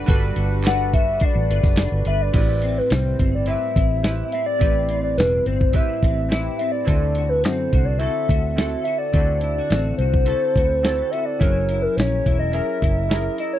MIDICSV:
0, 0, Header, 1, 7, 480
1, 0, Start_track
1, 0, Tempo, 566091
1, 72, Time_signature, 4, 2, 24, 8
1, 11523, End_track
2, 0, Start_track
2, 0, Title_t, "Soft synth lead"
2, 0, Program_c, 0, 80
2, 563, Note_on_c, 0, 78, 111
2, 781, Note_off_c, 0, 78, 0
2, 796, Note_on_c, 0, 76, 103
2, 1048, Note_on_c, 0, 74, 92
2, 1061, Note_off_c, 0, 76, 0
2, 1755, Note_off_c, 0, 74, 0
2, 1760, Note_on_c, 0, 76, 104
2, 1879, Note_on_c, 0, 74, 111
2, 1891, Note_off_c, 0, 76, 0
2, 1995, Note_off_c, 0, 74, 0
2, 2000, Note_on_c, 0, 74, 96
2, 2356, Note_on_c, 0, 71, 88
2, 2368, Note_off_c, 0, 74, 0
2, 2466, Note_on_c, 0, 72, 103
2, 2479, Note_off_c, 0, 71, 0
2, 2829, Note_off_c, 0, 72, 0
2, 2841, Note_on_c, 0, 74, 96
2, 2947, Note_on_c, 0, 76, 100
2, 2960, Note_off_c, 0, 74, 0
2, 3665, Note_off_c, 0, 76, 0
2, 3671, Note_on_c, 0, 76, 97
2, 3779, Note_off_c, 0, 76, 0
2, 3784, Note_on_c, 0, 74, 106
2, 4234, Note_off_c, 0, 74, 0
2, 4269, Note_on_c, 0, 74, 93
2, 4382, Note_off_c, 0, 74, 0
2, 4390, Note_on_c, 0, 71, 95
2, 4614, Note_off_c, 0, 71, 0
2, 4633, Note_on_c, 0, 72, 94
2, 4876, Note_on_c, 0, 76, 109
2, 4889, Note_off_c, 0, 72, 0
2, 5578, Note_off_c, 0, 76, 0
2, 5583, Note_on_c, 0, 76, 95
2, 5690, Note_off_c, 0, 76, 0
2, 5695, Note_on_c, 0, 74, 96
2, 5812, Note_off_c, 0, 74, 0
2, 5817, Note_on_c, 0, 74, 100
2, 6180, Note_on_c, 0, 71, 90
2, 6193, Note_off_c, 0, 74, 0
2, 6296, Note_on_c, 0, 72, 102
2, 6309, Note_off_c, 0, 71, 0
2, 6655, Note_on_c, 0, 74, 93
2, 6668, Note_off_c, 0, 72, 0
2, 6767, Note_on_c, 0, 76, 108
2, 6780, Note_off_c, 0, 74, 0
2, 7489, Note_off_c, 0, 76, 0
2, 7494, Note_on_c, 0, 76, 96
2, 7613, Note_off_c, 0, 76, 0
2, 7618, Note_on_c, 0, 74, 96
2, 7733, Note_off_c, 0, 74, 0
2, 7738, Note_on_c, 0, 74, 103
2, 7968, Note_off_c, 0, 74, 0
2, 7976, Note_on_c, 0, 74, 97
2, 8431, Note_off_c, 0, 74, 0
2, 8461, Note_on_c, 0, 72, 107
2, 9419, Note_on_c, 0, 76, 94
2, 9432, Note_off_c, 0, 72, 0
2, 9537, Note_on_c, 0, 74, 100
2, 9550, Note_off_c, 0, 76, 0
2, 9665, Note_on_c, 0, 73, 99
2, 9678, Note_off_c, 0, 74, 0
2, 10021, Note_on_c, 0, 70, 88
2, 10034, Note_off_c, 0, 73, 0
2, 10140, Note_on_c, 0, 73, 100
2, 10152, Note_off_c, 0, 70, 0
2, 10498, Note_off_c, 0, 73, 0
2, 10503, Note_on_c, 0, 75, 93
2, 10620, Note_off_c, 0, 75, 0
2, 10632, Note_on_c, 0, 76, 99
2, 11319, Note_off_c, 0, 76, 0
2, 11360, Note_on_c, 0, 75, 84
2, 11469, Note_off_c, 0, 75, 0
2, 11476, Note_on_c, 0, 73, 92
2, 11523, Note_off_c, 0, 73, 0
2, 11523, End_track
3, 0, Start_track
3, 0, Title_t, "Analog synth pad"
3, 0, Program_c, 1, 89
3, 0, Note_on_c, 1, 55, 79
3, 0, Note_on_c, 1, 66, 69
3, 0, Note_on_c, 1, 71, 86
3, 1959, Note_off_c, 1, 55, 0
3, 1960, Note_off_c, 1, 66, 0
3, 1961, Note_off_c, 1, 71, 0
3, 11523, End_track
4, 0, Start_track
4, 0, Title_t, "Synth keys"
4, 0, Program_c, 2, 88
4, 0, Control_c, 2, 64, 127
4, 0, Note_on_c, 2, 62, 73
4, 0, Note_on_c, 2, 66, 69
4, 0, Note_on_c, 2, 69, 64
4, 0, Note_on_c, 2, 71, 81
4, 52, Note_off_c, 2, 62, 0
4, 52, Note_on_c, 2, 62, 90
4, 63, Note_off_c, 2, 66, 0
4, 63, Note_on_c, 2, 66, 84
4, 69, Note_off_c, 2, 69, 0
4, 69, Note_on_c, 2, 69, 81
4, 75, Note_off_c, 2, 71, 0
4, 75, Note_on_c, 2, 71, 97
4, 394, Note_off_c, 2, 62, 0
4, 399, Note_off_c, 2, 66, 0
4, 402, Note_off_c, 2, 69, 0
4, 405, Note_off_c, 2, 71, 0
4, 537, Note_on_c, 2, 62, 72
4, 542, Note_on_c, 2, 66, 66
4, 550, Note_on_c, 2, 69, 72
4, 554, Note_on_c, 2, 74, 77
4, 1207, Note_off_c, 2, 62, 0
4, 1210, Note_off_c, 2, 66, 0
4, 1214, Note_off_c, 2, 69, 0
4, 1216, Note_off_c, 2, 74, 0
4, 1974, Note_on_c, 2, 60, 66
4, 1977, Note_on_c, 2, 64, 61
4, 1988, Note_on_c, 2, 67, 64
4, 1996, Note_on_c, 2, 71, 72
4, 2002, Control_c, 2, 64, 0
4, 2143, Control_c, 2, 64, 127
4, 2646, Note_off_c, 2, 60, 0
4, 2647, Note_off_c, 2, 64, 0
4, 2653, Note_off_c, 2, 67, 0
4, 2657, Note_off_c, 2, 71, 0
4, 2937, Note_on_c, 2, 60, 64
4, 2943, Note_on_c, 2, 64, 59
4, 2945, Note_on_c, 2, 67, 58
4, 2953, Note_on_c, 2, 71, 66
4, 3276, Note_off_c, 2, 60, 0
4, 3279, Note_off_c, 2, 64, 0
4, 3280, Note_off_c, 2, 67, 0
4, 3284, Note_off_c, 2, 71, 0
4, 3416, Note_on_c, 2, 60, 56
4, 3419, Note_on_c, 2, 64, 55
4, 3434, Note_on_c, 2, 67, 56
4, 3441, Note_on_c, 2, 71, 66
4, 3755, Note_off_c, 2, 60, 0
4, 3757, Note_off_c, 2, 64, 0
4, 3765, Note_off_c, 2, 67, 0
4, 3768, Note_off_c, 2, 71, 0
4, 3892, Note_on_c, 2, 60, 70
4, 3901, Note_on_c, 2, 64, 63
4, 3905, Note_on_c, 2, 67, 59
4, 3916, Note_on_c, 2, 71, 76
4, 4565, Note_off_c, 2, 60, 0
4, 4570, Note_off_c, 2, 64, 0
4, 4571, Note_off_c, 2, 67, 0
4, 4577, Note_off_c, 2, 71, 0
4, 4856, Note_on_c, 2, 60, 63
4, 4863, Note_on_c, 2, 64, 56
4, 4867, Note_on_c, 2, 67, 61
4, 4878, Note_on_c, 2, 71, 75
4, 5196, Note_off_c, 2, 60, 0
4, 5199, Note_off_c, 2, 64, 0
4, 5201, Note_off_c, 2, 67, 0
4, 5207, Note_off_c, 2, 71, 0
4, 5330, Note_on_c, 2, 60, 60
4, 5336, Note_on_c, 2, 64, 56
4, 5347, Note_on_c, 2, 67, 58
4, 5354, Note_on_c, 2, 71, 68
4, 5673, Note_off_c, 2, 60, 0
4, 5676, Note_off_c, 2, 64, 0
4, 5681, Note_off_c, 2, 67, 0
4, 5685, Note_off_c, 2, 71, 0
4, 5806, Note_on_c, 2, 60, 73
4, 5811, Note_on_c, 2, 64, 62
4, 5822, Note_on_c, 2, 66, 58
4, 5827, Note_on_c, 2, 69, 75
4, 5843, Control_c, 2, 64, 0
4, 5993, Control_c, 2, 64, 127
4, 6482, Note_off_c, 2, 60, 0
4, 6485, Note_off_c, 2, 64, 0
4, 6490, Note_off_c, 2, 66, 0
4, 6493, Note_off_c, 2, 69, 0
4, 6774, Note_on_c, 2, 60, 68
4, 6778, Note_on_c, 2, 64, 60
4, 6788, Note_on_c, 2, 66, 58
4, 6792, Note_on_c, 2, 69, 70
4, 7115, Note_off_c, 2, 60, 0
4, 7117, Note_off_c, 2, 64, 0
4, 7122, Note_off_c, 2, 66, 0
4, 7124, Note_off_c, 2, 69, 0
4, 7257, Note_on_c, 2, 60, 64
4, 7264, Note_on_c, 2, 64, 58
4, 7270, Note_on_c, 2, 66, 56
4, 7278, Note_on_c, 2, 69, 66
4, 7596, Note_off_c, 2, 60, 0
4, 7600, Note_off_c, 2, 64, 0
4, 7603, Note_off_c, 2, 66, 0
4, 7607, Note_off_c, 2, 69, 0
4, 7739, Note_on_c, 2, 60, 69
4, 7745, Note_on_c, 2, 64, 60
4, 7752, Note_on_c, 2, 66, 60
4, 7761, Note_on_c, 2, 69, 71
4, 8409, Note_off_c, 2, 60, 0
4, 8412, Note_off_c, 2, 64, 0
4, 8415, Note_off_c, 2, 66, 0
4, 8420, Note_off_c, 2, 69, 0
4, 8694, Note_on_c, 2, 60, 66
4, 8702, Note_on_c, 2, 64, 56
4, 8708, Note_on_c, 2, 66, 58
4, 8715, Note_on_c, 2, 69, 69
4, 9035, Note_off_c, 2, 60, 0
4, 9039, Note_off_c, 2, 64, 0
4, 9042, Note_off_c, 2, 66, 0
4, 9046, Note_off_c, 2, 69, 0
4, 9183, Note_on_c, 2, 60, 77
4, 9190, Note_on_c, 2, 64, 64
4, 9193, Note_on_c, 2, 66, 63
4, 9199, Note_on_c, 2, 69, 79
4, 9520, Note_off_c, 2, 60, 0
4, 9523, Note_off_c, 2, 64, 0
4, 9525, Note_off_c, 2, 66, 0
4, 9528, Note_off_c, 2, 69, 0
4, 9660, Note_on_c, 2, 61, 62
4, 9664, Note_on_c, 2, 64, 61
4, 9671, Note_on_c, 2, 68, 63
4, 9683, Note_on_c, 2, 70, 78
4, 9684, Control_c, 2, 64, 0
4, 9808, Control_c, 2, 64, 127
4, 10330, Note_off_c, 2, 61, 0
4, 10332, Note_off_c, 2, 64, 0
4, 10335, Note_off_c, 2, 68, 0
4, 10341, Note_off_c, 2, 70, 0
4, 10614, Note_on_c, 2, 61, 65
4, 10625, Note_on_c, 2, 64, 54
4, 10633, Note_on_c, 2, 68, 58
4, 10637, Note_on_c, 2, 70, 70
4, 10955, Note_off_c, 2, 61, 0
4, 10961, Note_off_c, 2, 64, 0
4, 10965, Note_off_c, 2, 68, 0
4, 10967, Note_off_c, 2, 70, 0
4, 11099, Note_on_c, 2, 61, 60
4, 11106, Note_on_c, 2, 64, 60
4, 11116, Note_on_c, 2, 68, 54
4, 11116, Note_on_c, 2, 70, 64
4, 11438, Note_off_c, 2, 61, 0
4, 11441, Note_off_c, 2, 64, 0
4, 11447, Note_off_c, 2, 68, 0
4, 11447, Note_off_c, 2, 70, 0
4, 11523, End_track
5, 0, Start_track
5, 0, Title_t, "Clean electric guitar"
5, 0, Program_c, 3, 27
5, 0, Note_on_c, 3, 62, 66
5, 0, Note_on_c, 3, 66, 69
5, 66, Note_on_c, 3, 55, 83
5, 78, Note_on_c, 3, 71, 72
5, 299, Note_off_c, 3, 66, 0
5, 309, Note_on_c, 3, 66, 67
5, 542, Note_off_c, 3, 71, 0
5, 553, Note_on_c, 3, 71, 65
5, 784, Note_off_c, 3, 66, 0
5, 794, Note_on_c, 3, 66, 63
5, 1022, Note_off_c, 3, 62, 0
5, 1032, Note_on_c, 3, 62, 70
5, 1267, Note_off_c, 3, 71, 0
5, 1278, Note_on_c, 3, 71, 61
5, 1504, Note_off_c, 3, 62, 0
5, 1515, Note_on_c, 3, 62, 62
5, 1746, Note_off_c, 3, 71, 0
5, 1756, Note_on_c, 3, 71, 67
5, 1987, Note_on_c, 3, 45, 77
5, 2012, Note_off_c, 3, 55, 0
5, 2041, Note_off_c, 3, 62, 0
5, 2041, Note_off_c, 3, 66, 0
5, 2042, Note_off_c, 3, 71, 0
5, 2234, Note_on_c, 3, 60, 59
5, 2469, Note_on_c, 3, 55, 52
5, 2704, Note_off_c, 3, 60, 0
5, 2708, Note_on_c, 3, 60, 59
5, 2944, Note_on_c, 3, 64, 63
5, 3186, Note_off_c, 3, 60, 0
5, 3189, Note_on_c, 3, 60, 49
5, 3419, Note_off_c, 3, 64, 0
5, 3429, Note_on_c, 3, 64, 64
5, 3680, Note_off_c, 3, 60, 0
5, 3684, Note_on_c, 3, 60, 54
5, 3903, Note_off_c, 3, 45, 0
5, 3913, Note_on_c, 3, 45, 74
5, 4151, Note_off_c, 3, 60, 0
5, 4155, Note_on_c, 3, 60, 60
5, 4389, Note_off_c, 3, 55, 0
5, 4399, Note_on_c, 3, 55, 53
5, 4633, Note_off_c, 3, 60, 0
5, 4637, Note_on_c, 3, 60, 62
5, 4867, Note_off_c, 3, 64, 0
5, 4877, Note_on_c, 3, 64, 63
5, 5117, Note_off_c, 3, 60, 0
5, 5120, Note_on_c, 3, 60, 50
5, 5344, Note_off_c, 3, 64, 0
5, 5354, Note_on_c, 3, 64, 65
5, 5600, Note_off_c, 3, 60, 0
5, 5603, Note_on_c, 3, 60, 57
5, 5833, Note_off_c, 3, 45, 0
5, 5833, Note_on_c, 3, 50, 75
5, 5882, Note_off_c, 3, 64, 0
5, 5884, Note_off_c, 3, 55, 0
5, 6085, Note_on_c, 3, 66, 59
5, 6110, Note_off_c, 3, 60, 0
5, 6325, Note_on_c, 3, 60, 57
5, 6559, Note_off_c, 3, 66, 0
5, 6562, Note_on_c, 3, 66, 60
5, 6809, Note_on_c, 3, 69, 66
5, 7036, Note_off_c, 3, 66, 0
5, 7040, Note_on_c, 3, 66, 55
5, 7271, Note_off_c, 3, 69, 0
5, 7281, Note_on_c, 3, 69, 65
5, 7519, Note_off_c, 3, 66, 0
5, 7523, Note_on_c, 3, 66, 58
5, 7745, Note_off_c, 3, 50, 0
5, 7755, Note_on_c, 3, 50, 74
5, 7998, Note_off_c, 3, 66, 0
5, 8002, Note_on_c, 3, 64, 61
5, 8126, Note_off_c, 3, 64, 0
5, 8126, Note_on_c, 3, 66, 43
5, 8239, Note_off_c, 3, 60, 0
5, 8250, Note_on_c, 3, 60, 55
5, 8478, Note_off_c, 3, 66, 0
5, 8488, Note_on_c, 3, 66, 59
5, 8717, Note_off_c, 3, 69, 0
5, 8728, Note_on_c, 3, 69, 60
5, 8964, Note_off_c, 3, 66, 0
5, 8967, Note_on_c, 3, 66, 51
5, 9192, Note_off_c, 3, 69, 0
5, 9202, Note_on_c, 3, 69, 60
5, 9443, Note_off_c, 3, 66, 0
5, 9446, Note_on_c, 3, 66, 56
5, 9674, Note_off_c, 3, 50, 0
5, 9681, Note_on_c, 3, 54, 74
5, 9726, Note_off_c, 3, 69, 0
5, 9730, Note_off_c, 3, 60, 0
5, 9924, Note_off_c, 3, 66, 0
5, 9928, Note_on_c, 3, 64, 59
5, 10161, Note_on_c, 3, 61, 56
5, 10394, Note_off_c, 3, 64, 0
5, 10404, Note_on_c, 3, 64, 56
5, 10644, Note_on_c, 3, 70, 65
5, 10865, Note_off_c, 3, 64, 0
5, 10876, Note_on_c, 3, 64, 52
5, 11109, Note_off_c, 3, 70, 0
5, 11119, Note_on_c, 3, 70, 65
5, 11349, Note_off_c, 3, 64, 0
5, 11359, Note_on_c, 3, 64, 62
5, 11523, Note_off_c, 3, 54, 0
5, 11523, Note_off_c, 3, 61, 0
5, 11523, Note_off_c, 3, 64, 0
5, 11523, Note_off_c, 3, 70, 0
5, 11523, End_track
6, 0, Start_track
6, 0, Title_t, "Fingered electric bass"
6, 0, Program_c, 4, 33
6, 70, Note_on_c, 4, 31, 99
6, 263, Note_off_c, 4, 31, 0
6, 307, Note_on_c, 4, 31, 89
6, 996, Note_off_c, 4, 31, 0
6, 1149, Note_on_c, 4, 33, 89
6, 1246, Note_off_c, 4, 33, 0
6, 1272, Note_on_c, 4, 31, 93
6, 1368, Note_off_c, 4, 31, 0
6, 1386, Note_on_c, 4, 30, 85
6, 1580, Note_off_c, 4, 30, 0
6, 1627, Note_on_c, 4, 31, 83
6, 1725, Note_off_c, 4, 31, 0
6, 1750, Note_on_c, 4, 31, 94
6, 1943, Note_off_c, 4, 31, 0
6, 1984, Note_on_c, 4, 33, 85
6, 2371, Note_off_c, 4, 33, 0
6, 2467, Note_on_c, 4, 36, 85
6, 2661, Note_off_c, 4, 36, 0
6, 2710, Note_on_c, 4, 31, 77
6, 2999, Note_off_c, 4, 31, 0
6, 3189, Note_on_c, 4, 33, 89
6, 3574, Note_off_c, 4, 33, 0
6, 3907, Note_on_c, 4, 33, 101
6, 4390, Note_on_c, 4, 28, 82
6, 4403, Note_off_c, 4, 33, 0
6, 4583, Note_off_c, 4, 28, 0
6, 4631, Note_on_c, 4, 31, 75
6, 4920, Note_off_c, 4, 31, 0
6, 5110, Note_on_c, 4, 33, 92
6, 5495, Note_off_c, 4, 33, 0
6, 5827, Note_on_c, 4, 38, 91
6, 6314, Note_off_c, 4, 38, 0
6, 6314, Note_on_c, 4, 42, 84
6, 6506, Note_off_c, 4, 42, 0
6, 6554, Note_on_c, 4, 36, 83
6, 6842, Note_off_c, 4, 36, 0
6, 7030, Note_on_c, 4, 38, 91
6, 7415, Note_off_c, 4, 38, 0
6, 7747, Note_on_c, 4, 38, 88
6, 8134, Note_off_c, 4, 38, 0
6, 8229, Note_on_c, 4, 33, 76
6, 8423, Note_off_c, 4, 33, 0
6, 8467, Note_on_c, 4, 36, 73
6, 8757, Note_off_c, 4, 36, 0
6, 8952, Note_on_c, 4, 38, 84
6, 9337, Note_off_c, 4, 38, 0
6, 9673, Note_on_c, 4, 30, 92
6, 10057, Note_off_c, 4, 30, 0
6, 10153, Note_on_c, 4, 34, 85
6, 10345, Note_off_c, 4, 34, 0
6, 10397, Note_on_c, 4, 28, 82
6, 10684, Note_off_c, 4, 28, 0
6, 10874, Note_on_c, 4, 30, 87
6, 11258, Note_off_c, 4, 30, 0
6, 11523, End_track
7, 0, Start_track
7, 0, Title_t, "Drums"
7, 71, Note_on_c, 9, 36, 110
7, 71, Note_on_c, 9, 42, 101
7, 156, Note_off_c, 9, 36, 0
7, 156, Note_off_c, 9, 42, 0
7, 307, Note_on_c, 9, 42, 80
7, 391, Note_off_c, 9, 42, 0
7, 539, Note_on_c, 9, 39, 78
7, 551, Note_on_c, 9, 42, 93
7, 566, Note_on_c, 9, 38, 98
7, 624, Note_off_c, 9, 39, 0
7, 635, Note_off_c, 9, 42, 0
7, 650, Note_off_c, 9, 38, 0
7, 793, Note_on_c, 9, 36, 83
7, 796, Note_on_c, 9, 42, 65
7, 878, Note_off_c, 9, 36, 0
7, 881, Note_off_c, 9, 42, 0
7, 1016, Note_on_c, 9, 42, 77
7, 1029, Note_on_c, 9, 36, 88
7, 1101, Note_off_c, 9, 42, 0
7, 1113, Note_off_c, 9, 36, 0
7, 1278, Note_on_c, 9, 42, 80
7, 1363, Note_off_c, 9, 42, 0
7, 1387, Note_on_c, 9, 36, 101
7, 1391, Note_on_c, 9, 38, 34
7, 1472, Note_off_c, 9, 36, 0
7, 1476, Note_off_c, 9, 38, 0
7, 1502, Note_on_c, 9, 39, 82
7, 1504, Note_on_c, 9, 38, 109
7, 1509, Note_on_c, 9, 42, 91
7, 1587, Note_off_c, 9, 39, 0
7, 1589, Note_off_c, 9, 38, 0
7, 1594, Note_off_c, 9, 42, 0
7, 1739, Note_on_c, 9, 42, 71
7, 1824, Note_off_c, 9, 42, 0
7, 1980, Note_on_c, 9, 49, 76
7, 1981, Note_on_c, 9, 42, 90
7, 1985, Note_on_c, 9, 36, 94
7, 2065, Note_off_c, 9, 49, 0
7, 2066, Note_off_c, 9, 42, 0
7, 2070, Note_off_c, 9, 36, 0
7, 2220, Note_on_c, 9, 42, 65
7, 2305, Note_off_c, 9, 42, 0
7, 2462, Note_on_c, 9, 42, 86
7, 2477, Note_on_c, 9, 38, 95
7, 2547, Note_off_c, 9, 42, 0
7, 2562, Note_off_c, 9, 38, 0
7, 2708, Note_on_c, 9, 42, 66
7, 2709, Note_on_c, 9, 36, 78
7, 2793, Note_off_c, 9, 42, 0
7, 2794, Note_off_c, 9, 36, 0
7, 2933, Note_on_c, 9, 42, 76
7, 3018, Note_off_c, 9, 42, 0
7, 3189, Note_on_c, 9, 36, 85
7, 3198, Note_on_c, 9, 42, 70
7, 3273, Note_off_c, 9, 36, 0
7, 3283, Note_off_c, 9, 42, 0
7, 3428, Note_on_c, 9, 38, 101
7, 3433, Note_on_c, 9, 42, 76
7, 3513, Note_off_c, 9, 38, 0
7, 3518, Note_off_c, 9, 42, 0
7, 3666, Note_on_c, 9, 42, 68
7, 3751, Note_off_c, 9, 42, 0
7, 3910, Note_on_c, 9, 36, 97
7, 3910, Note_on_c, 9, 42, 80
7, 3995, Note_off_c, 9, 36, 0
7, 3995, Note_off_c, 9, 42, 0
7, 4144, Note_on_c, 9, 42, 70
7, 4229, Note_off_c, 9, 42, 0
7, 4394, Note_on_c, 9, 42, 85
7, 4409, Note_on_c, 9, 38, 96
7, 4479, Note_off_c, 9, 42, 0
7, 4494, Note_off_c, 9, 38, 0
7, 4631, Note_on_c, 9, 42, 62
7, 4716, Note_off_c, 9, 42, 0
7, 4755, Note_on_c, 9, 36, 93
7, 4840, Note_off_c, 9, 36, 0
7, 4862, Note_on_c, 9, 42, 74
7, 4871, Note_on_c, 9, 36, 81
7, 4947, Note_off_c, 9, 42, 0
7, 4956, Note_off_c, 9, 36, 0
7, 5110, Note_on_c, 9, 36, 79
7, 5123, Note_on_c, 9, 42, 69
7, 5195, Note_off_c, 9, 36, 0
7, 5208, Note_off_c, 9, 42, 0
7, 5358, Note_on_c, 9, 38, 94
7, 5363, Note_on_c, 9, 42, 75
7, 5443, Note_off_c, 9, 38, 0
7, 5448, Note_off_c, 9, 42, 0
7, 5591, Note_on_c, 9, 42, 63
7, 5675, Note_off_c, 9, 42, 0
7, 5830, Note_on_c, 9, 36, 106
7, 5831, Note_on_c, 9, 42, 86
7, 5915, Note_off_c, 9, 36, 0
7, 5916, Note_off_c, 9, 42, 0
7, 6063, Note_on_c, 9, 42, 69
7, 6148, Note_off_c, 9, 42, 0
7, 6308, Note_on_c, 9, 42, 85
7, 6322, Note_on_c, 9, 38, 92
7, 6392, Note_off_c, 9, 42, 0
7, 6407, Note_off_c, 9, 38, 0
7, 6553, Note_on_c, 9, 36, 79
7, 6555, Note_on_c, 9, 42, 59
7, 6637, Note_off_c, 9, 36, 0
7, 6639, Note_off_c, 9, 42, 0
7, 6780, Note_on_c, 9, 42, 76
7, 6865, Note_off_c, 9, 42, 0
7, 7031, Note_on_c, 9, 36, 83
7, 7042, Note_on_c, 9, 42, 70
7, 7115, Note_off_c, 9, 36, 0
7, 7127, Note_off_c, 9, 42, 0
7, 7278, Note_on_c, 9, 38, 102
7, 7283, Note_on_c, 9, 42, 72
7, 7363, Note_off_c, 9, 38, 0
7, 7367, Note_off_c, 9, 42, 0
7, 7506, Note_on_c, 9, 42, 63
7, 7591, Note_off_c, 9, 42, 0
7, 7746, Note_on_c, 9, 42, 85
7, 7749, Note_on_c, 9, 36, 98
7, 7831, Note_off_c, 9, 42, 0
7, 7834, Note_off_c, 9, 36, 0
7, 7980, Note_on_c, 9, 42, 76
7, 8065, Note_off_c, 9, 42, 0
7, 8228, Note_on_c, 9, 42, 88
7, 8243, Note_on_c, 9, 38, 98
7, 8313, Note_off_c, 9, 42, 0
7, 8328, Note_off_c, 9, 38, 0
7, 8468, Note_on_c, 9, 42, 60
7, 8552, Note_off_c, 9, 42, 0
7, 8596, Note_on_c, 9, 36, 96
7, 8680, Note_off_c, 9, 36, 0
7, 8701, Note_on_c, 9, 42, 74
7, 8785, Note_off_c, 9, 42, 0
7, 8951, Note_on_c, 9, 36, 79
7, 8965, Note_on_c, 9, 42, 68
7, 9036, Note_off_c, 9, 36, 0
7, 9050, Note_off_c, 9, 42, 0
7, 9197, Note_on_c, 9, 38, 97
7, 9202, Note_on_c, 9, 42, 76
7, 9282, Note_off_c, 9, 38, 0
7, 9287, Note_off_c, 9, 42, 0
7, 9436, Note_on_c, 9, 42, 65
7, 9521, Note_off_c, 9, 42, 0
7, 9674, Note_on_c, 9, 36, 100
7, 9680, Note_on_c, 9, 42, 88
7, 9759, Note_off_c, 9, 36, 0
7, 9764, Note_off_c, 9, 42, 0
7, 9910, Note_on_c, 9, 42, 71
7, 9995, Note_off_c, 9, 42, 0
7, 10158, Note_on_c, 9, 42, 90
7, 10173, Note_on_c, 9, 38, 97
7, 10243, Note_off_c, 9, 42, 0
7, 10258, Note_off_c, 9, 38, 0
7, 10397, Note_on_c, 9, 36, 76
7, 10401, Note_on_c, 9, 42, 64
7, 10482, Note_off_c, 9, 36, 0
7, 10486, Note_off_c, 9, 42, 0
7, 10627, Note_on_c, 9, 42, 74
7, 10712, Note_off_c, 9, 42, 0
7, 10873, Note_on_c, 9, 36, 85
7, 10885, Note_on_c, 9, 42, 73
7, 10957, Note_off_c, 9, 36, 0
7, 10970, Note_off_c, 9, 42, 0
7, 11118, Note_on_c, 9, 38, 99
7, 11123, Note_on_c, 9, 42, 76
7, 11203, Note_off_c, 9, 38, 0
7, 11208, Note_off_c, 9, 42, 0
7, 11347, Note_on_c, 9, 42, 69
7, 11432, Note_off_c, 9, 42, 0
7, 11523, End_track
0, 0, End_of_file